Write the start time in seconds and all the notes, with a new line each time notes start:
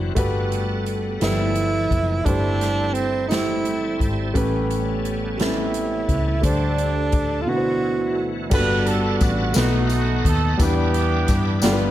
Already playing: F#1 D3 E3 F#3 C4 D4 E4 F#4 B4 D5
0.15 G1 G2 G3 A3 B3 F#4 G4 A4 B4 F#5, kick, closed hi-hat
0.52 closed hi-hat
0.86 closed hi-hat
1.20 G1 F3 G3 A3 E4 B4, snare, closed hi-hat
1.55 closed hi-hat
1.91 F#1, kick, closed hi-hat
2.25 G1 G2 G3 A3 C4 D4 E4 G4 C5, kick, closed hi-hat
2.61 snare, closed hi-hat
2.93 C4, closed hi-hat
3.28 A3 E4 G4, snare, closed hi-hat
3.33 C5
3.65 closed hi-hat
4.00 G#1, kick, closed hi-hat
4.34 A1 A2 A3 B3 C#4 G4 B4, kick, closed hi-hat
4.71 closed hi-hat
5.05 closed hi-hat
5.38 A3 C4 E4 G4 B4, snare, closed hi-hat
5.45 C#4
5.74 closed hi-hat
6.09 C#2, kick, closed hi-hat
6.41 D2 D3 G3 A3 D4 G4 C5, kick, closed hi-hat
6.78 closed hi-hat
7.12 kick, closed hi-hat
7.42 B2 F4
7.47 D2 B2 D3 E3 F#3 E4 F#4 B4
7.56 C5
8.50 G1 G2 G3 A3 D4 F#4 A4 B4 F#5 A5, kick, crash, tambourine
8.58 B3
8.86 A4, closed hi-hat
9.21 A1 F#4, kick, closed hi-hat, tambourine
9.54 B1 B2 A3 B3 C4 D#4 F#4 A4 B4 D#5 B5, snare, closed hi-hat, tambourine
9.62 D#4
9.89 closed hi-hat, tambourine
9.94 F#4
10.25 D#2 A4, kick, closed hi-hat
10.58 E2 E3 G3 B3 D4 E4 B4 E5, kick, closed hi-hat, tambourine
10.62 G4 D5
10.94 closed hi-hat
11.28 G2, kick, closed hi-hat, tambourine
11.62 G1 G2 G3 B3 D4 F4 A4, snare, closed hi-hat, tambourine
11.72 B4